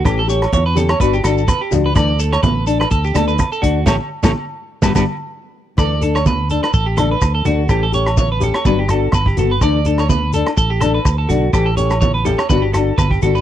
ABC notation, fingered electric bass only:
X:1
M:4/4
L:1/16
Q:"Swing 16ths" 1/4=125
K:D
V:1 name="Fingered electric bass" clef=bass
A,,,4 E,,4 G,,,2 G,,,2 z2 C,,2 | D,,4 A,,,4 D,,2 D,,2 z2 D,,2 | A,,, z2 A,,, z4 G,,, G,,, z6 | D,,8 A,,,4 D,,2 D,,2 |
A,,,8 G,,,4 G,,,2 G,,,2 | D,,8 A,,,4 D,,2 B,,,2 | A,,,8 G,,,4 G,,,2 G,,,2 |]